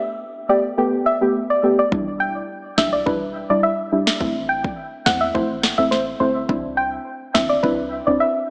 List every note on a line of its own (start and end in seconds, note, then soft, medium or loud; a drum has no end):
0.00 0.16 A3 loud
0.00 0.16 B3 medium
0.00 0.17 G4 loud
0.49 0.70 A3 medium
0.49 0.70 B3 medium
0.49 0.70 G4 medium
0.49 0.61 D5 medium
0.77 0.98 A3 loud
0.77 0.98 B3 medium
0.77 0.98 G4 loud
1.06 1.18 E5 medium
1.21 1.41 A3 medium
1.21 1.41 B3 medium
1.21 1.41 G4 medium
1.50 1.61 D5 medium
1.63 1.84 A3 medium
1.63 1.84 B3 medium
1.63 1.84 G4 medium
1.79 1.89 D5 medium
1.92 2.41 E1 loud
1.92 2.45 G3 loud
1.92 2.45 D4 medium
1.92 2.45 E4 loud
1.92 kick loud
2.20 2.32 G5 medium
2.77 3.02 B1 medium
2.77 2.98 G3 medium
2.77 2.98 D4 medium
2.77 2.98 E4 medium
2.77 2.90 E5 medium
2.77 kick loud
2.77 snare loud
2.93 3.03 D5 medium
3.06 3.44 E1 loud
3.06 3.27 G3 loud
3.06 3.27 D4 medium
3.06 3.27 E4 loud
3.06 3.18 B4 medium
3.06 kick loud
3.50 3.61 E1 medium
3.50 3.69 G3 medium
3.50 3.70 D4 medium
3.50 3.70 E4 medium
3.50 3.60 D5 medium
3.63 4.04 E5 medium
3.92 4.13 G3 medium
3.92 4.13 D4 medium
3.92 4.13 E4 medium
4.07 snare loud
4.20 4.69 A1 loud
4.20 4.73 A3 loud
4.20 4.73 C4 medium
4.20 4.74 E4 loud
4.20 kick loud
4.49 4.61 G5 medium
4.64 kick medium
5.06 5.31 E2 medium
5.06 5.27 A3 medium
5.06 5.27 C4 medium
5.06 5.27 E4 medium
5.06 5.18 F#5 medium
5.06 kick loud
5.06 snare loud
5.21 5.31 E5 medium
5.35 5.72 A1 loud
5.35 5.55 A3 loud
5.35 5.55 C4 medium
5.35 5.56 E4 loud
5.35 5.46 C5 medium
5.35 kick loud
5.63 snare loud
5.78 6.14 A1 medium
5.78 5.98 A3 medium
5.78 5.98 C4 medium
5.78 5.98 E4 medium
5.78 5.89 E5 medium
5.91 6.03 C5 medium
5.91 snare medium
6.20 6.45 G1 medium
6.20 6.41 A3 medium
6.20 6.41 C4 medium
6.20 6.41 E4 medium
6.20 6.32 C5 medium
6.49 6.98 C2 loud
6.49 7.02 C4 loud
6.49 7.02 D4 medium
6.49 7.02 E4 loud
6.49 kick loud
6.77 6.89 G5 medium
7.34 7.59 G1 loud
7.34 7.55 C4 medium
7.34 7.56 D4 medium
7.34 7.56 E4 medium
7.34 7.46 E5 medium
7.34 kick loud
7.34 snare loud
7.49 7.60 D5 medium
7.63 8.01 C2 loud
7.63 7.84 C4 loud
7.63 7.84 D4 medium
7.63 7.84 E4 loud
7.63 7.75 B4 medium
7.63 kick loud
8.07 8.19 C2 medium
8.07 8.27 C4 medium
8.07 8.27 D4 medium
8.07 8.27 E4 medium
8.07 8.17 D5 medium
8.20 8.50 E5 medium